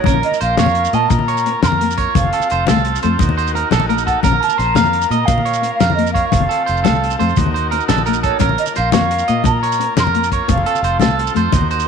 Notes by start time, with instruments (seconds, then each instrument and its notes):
Already playing: flute C#5
0.04 fingered electric bass A#1, transistor combo organ A#3, nylon-string guitar C#4, clean electric guitar A#4, kick, closed hi-hat, high conga
0.08 transistor combo organ F4 A#4, shekere
0.14 low conga
0.23 flute D#5, closed hi-hat
0.32 low conga, shekere
0.41 fingered electric bass A#1, clean electric guitar C5, flute F5, closed hi-hat, shekere
0.57 fingered electric bass F2, nylon-string guitar A#3, clean electric guitar C#5, snare, closed hi-hat, high conga, shekere
0.66 low conga, shekere
0.75 closed hi-hat
0.85 shekere
0.93 fingered electric bass A#2, nylon-string guitar A#3, clean electric guitar D#5, flute A5, closed hi-hat, shekere
1.09 fingered electric bass A#2, flute A#5, kick, closed hi-hat, high conga, shekere
1.19 low conga
1.28 clean electric guitar C#5, closed hi-hat
1.37 shekere
1.46 nylon-string guitar C4, closed hi-hat, shekere
1.63 fingered electric bass F2, clean electric guitar A#4, flute C6, snare, closed hi-hat, high conga, shekere
1.67 flute A#5
1.72 low conga
1.81 nylon-string guitar A#3, closed hi-hat
1.91 shekere
1.97 clean electric guitar C#5, kick, closed hi-hat, shekere
2.15 fingered electric bass F1, nylon-string guitar C4, transistor combo organ C4 A4, flute F5, kick, closed hi-hat, high conga, shekere
2.23 low conga
2.33 clean electric guitar A4, closed hi-hat
2.40 low conga, shekere
2.50 fingered electric bass F1, clean electric guitar C5, closed hi-hat, shekere
2.67 fingered electric bass C2, nylon-string guitar A3, clean electric guitar A4, snare, closed hi-hat, high conga, shekere
2.76 low conga, shekere
2.85 closed hi-hat
2.95 shekere
3.02 fingered electric bass F2, nylon-string guitar A3, clean electric guitar C5, closed hi-hat, shekere
3.19 fingered electric bass D#2, transistor combo organ D#4 F#4 A#4, kick, closed hi-hat, high conga, shekere
3.29 low conga
3.37 clean electric guitar C5, closed hi-hat
3.47 shekere
3.54 nylon-string guitar C4, clean electric guitar A#4, closed hi-hat, shekere
3.71 fingered electric bass A#1, clean electric guitar A4, snare, closed hi-hat, high conga, shekere
3.80 low conga
3.89 nylon-string guitar A#3, clean electric guitar A#4, closed hi-hat
3.98 shekere
4.06 clean electric guitar A4, flute F#5, kick, closed hi-hat, shekere
4.23 fingered electric bass A#1, transistor combo organ A#3 F4, nylon-string guitar C#4, clean electric guitar A#4, flute A#5, kick, closed hi-hat, high conga, shekere
4.32 low conga
4.42 flute A5, closed hi-hat
4.48 low conga, shekere
4.57 fingered electric bass A#1, clean electric guitar C5, flute A#5, snare, closed hi-hat, shekere
4.75 fingered electric bass F2, nylon-string guitar A#3, clean electric guitar F5, snare, closed hi-hat, high conga, shekere
4.84 low conga, shekere
4.93 closed hi-hat
5.02 shekere
5.10 fingered electric bass A#2, nylon-string guitar A#3, clean electric guitar D#5, closed hi-hat, shekere
5.25 fingered electric bass A#2, flute F5, kick, closed hi-hat, high conga, shekere
5.38 low conga
5.45 clean electric guitar C#5, closed hi-hat
5.54 shekere
5.62 nylon-string guitar C4, closed hi-hat, shekere
5.74 flute F5
5.80 fingered electric bass F2, clean electric guitar A#4, snare, closed hi-hat, high conga, shekere
5.90 low conga
5.94 nylon-string guitar A#3, flute D#5
5.99 closed hi-hat
6.07 shekere
6.12 clean electric guitar C#5, flute F5, kick, closed hi-hat
6.16 shekere
6.28 flute F5, high conga, low conga
6.32 fingered electric bass F1, nylon-string guitar C4, transistor combo organ C4 A4, kick, closed hi-hat, shekere
6.40 low conga
6.49 clean electric guitar A4, closed hi-hat
6.66 fingered electric bass F1, clean electric guitar C5, closed hi-hat, shekere
6.77 shekere
6.84 fingered electric bass C2, nylon-string guitar A3, clean electric guitar A4, snare, closed hi-hat, high conga, shekere
6.93 low conga, shekere
7.04 closed hi-hat
7.10 low conga, shekere
7.19 fingered electric bass F2, nylon-string guitar A3, clean electric guitar C5, closed hi-hat
7.29 low conga, shekere
7.36 fingered electric bass D#2, transistor combo organ D#4 F#4 A#4, kick, closed hi-hat, high conga, shekere
7.46 low conga
7.54 clean electric guitar C5, closed hi-hat, low conga
7.71 nylon-string guitar C4, clean electric guitar A#4, closed hi-hat
7.80 shekere
7.88 fingered electric bass A#1, clean electric guitar A4, snare, closed hi-hat, high conga, shekere
7.97 low conga, shekere
8.06 nylon-string guitar A#3, clean electric guitar A#4, closed hi-hat, shekere
8.13 shekere
8.23 clean electric guitar A4, flute C#5, kick, closed hi-hat
8.39 fingered electric bass A#1, transistor combo organ A#3 F4, nylon-string guitar C#4, clean electric guitar A#4, kick, closed hi-hat, high conga, shekere
8.49 low conga
8.58 flute D#5, closed hi-hat
8.66 low conga, shekere
8.75 fingered electric bass A#1, clean electric guitar C5, flute F5, snare, closed hi-hat, shekere
8.92 fingered electric bass F2, nylon-string guitar A#3, clean electric guitar C#5, snare, closed hi-hat, high conga, shekere
9.01 low conga, shekere
9.11 closed hi-hat
9.19 shekere
9.28 fingered electric bass A#2, nylon-string guitar A#3, clean electric guitar D#5, closed hi-hat, shekere
9.44 fingered electric bass A#2, flute A#5, kick, closed hi-hat, high conga, shekere
9.63 clean electric guitar C#5, closed hi-hat
9.72 shekere
9.79 nylon-string guitar C4, closed hi-hat, shekere
9.97 fingered electric bass F2, clean electric guitar A#4, flute C6, snare, closed hi-hat, high conga, shekere
10.03 flute A#5, low conga
10.15 nylon-string guitar A#3, closed hi-hat
10.24 shekere
10.32 clean electric guitar C#5, kick, closed hi-hat, shekere
10.48 fingered electric bass F1, nylon-string guitar C4, transistor combo organ C4 A4, flute F5, kick, closed hi-hat, high conga, shekere
10.58 low conga
10.66 clean electric guitar A4, closed hi-hat
10.75 low conga, shekere
10.82 fingered electric bass F1, clean electric guitar C5, closed hi-hat, shekere
10.99 fingered electric bass C2, nylon-string guitar A3, clean electric guitar A4, snare, closed hi-hat, high conga, shekere
11.08 low conga, shekere
11.19 closed hi-hat
11.27 shekere
11.34 fingered electric bass F2, nylon-string guitar A3, clean electric guitar C5, closed hi-hat, shekere
11.52 fingered electric bass D#2, transistor combo organ D#4 F#4 A#4, kick, closed hi-hat, high conga, shekere
11.61 low conga
11.71 clean electric guitar C5, closed hi-hat
11.79 shekere